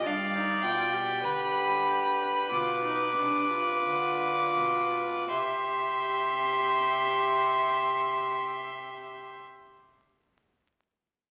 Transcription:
X:1
M:4/4
L:1/16
Q:1/4=40
K:Gphr
V:1 name="Violin"
f2 g2 =b4 d'8 | c'16 |]
V:2 name="Violin"
d4 =B12 | =e16 |]
V:3 name="Viola"
D E F G4- G F E D F4- F | G16 |]
V:4 name="Cello" clef=bass
G,,2 =B,,2 D,4 B,,2 C,2 D,2 B,,2 | C,16 |]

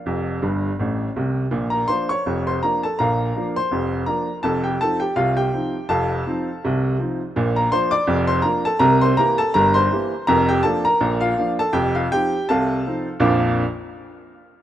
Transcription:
X:1
M:2/4
L:1/16
Q:"Swing 16ths" 1/4=82
K:Bb
V:1 name="Upright piano"
[Fdf]6 z2 | z [Bb] [cc'] [_d_d']2 [cc'] [Bb] [Aa] | [Bfb]3 [cc']3 [Bb]2 | [Aa] [Gg] [Aa] [Gg] [Ff] [Gg]3 |
[Afa]6 z2 | z [Bb] [cc'] [dd']2 [cc'] [Bb] [Aa] | [Bb] [cc'] [Bb] [Aa] [Bb] [cc']3 | [Bb] [Gg] [Aa] [Bb]2 [Ff]2 [Aa] |
[Gg] [Ff] [Gg]2 [Afa]4 | [B,,,F,,F,B,DFd']2 z6 |]
V:2 name="Upright piano" clef=bass
[F,,,F,,]2 [G,,,G,,]2 [A,,,A,,]2 [C,,C,]2 | [B,,,B,,]2 [F,B,D]2 [F,,,F,,]2 [F,B,D]2 | [B,,,B,,]2 [F,B,D]2 [F,,,F,,]2 [F,B,D]2 | [F,,,F,,]2 [F,CE]2 [C,,C,]2 [F,CE]2 |
[F,,,F,,]2 [F,CE]2 [C,,C,]2 [F,CE]2 | [B,,,B,,]2 [F,B,D]2 [F,,,F,,]2 [F,B,D]2 | [C,,C,]2 [=E,B,G]2 [G,,,G,,]2 [E,B,G]2 | [F,,,F,,]2 [F,B,D]2 [B,,,B,,]2 [F,B,D]2 |
[F,,,F,,]2 [F,CE]2 [C,,C,]2 [F,CE]2 | z8 |]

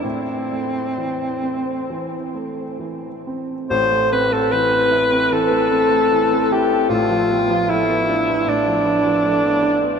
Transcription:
X:1
M:4/4
L:1/16
Q:1/4=75
K:Am
V:1 name="Alto saxophone"
C12 z4 | c2 B A B4 A6 G2 | F4 E4 D8 |]
V:2 name="Grand piano"
A,,2 A,2 E,2 C2 E,2 A,2 E,2 C2 | [A,,,A,,] A, C A, E, C E C E, A, C A, E, C E C | [A,,,A,,] F, B, F, A, B, D B, A,, F, B, F, A, B, D B, |]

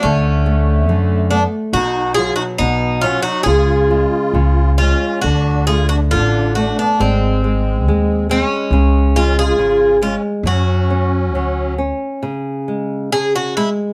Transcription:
X:1
M:2/4
L:1/16
Q:1/4=69
K:F#m
V:1 name="Bouzouki"
C6 D2 | F2 G F ^D2 ^E F | G6 ^E2 | F2 G F ^E2 F D |
^B,6 C2- | C2 ^E G3 E2 | F6 z2 | [K:C#m] z4 G F E2 |]
V:2 name="Accordion"
A,6 B,2 | ^D2 ^E D B,2 C D | ^E6 C2 | D2 ^E D D2 D B, |
G,6 G,2- | G,2 C ^E3 C2 | C6 z2 | [K:C#m] z8 |]
V:3 name="Nylon-string guitar" clef=bass
D,2 A,2 D,2 A,2 | B,,2 F,2 B,,2 F,2 | C,2 G,2 C,2 G,2 | D,2 A,2 D,2 A,2 |
G,2 G,2 G,2 G,2 | C,2 G,2 C,2 G,2 | F,2 C2 F,2 C2 | [K:C#m] C,2 G,2 C,2 G,2 |]
V:4 name="Upright bass" clef=bass
D,,4 F,,4 | B,,,4 B,,,4 | C,,4 C,,4 | D,,4 A,,,4 |
G,,,4 ^D,,4 | C,,4 G,,,4 | F,,4 D,,4 | [K:C#m] z8 |]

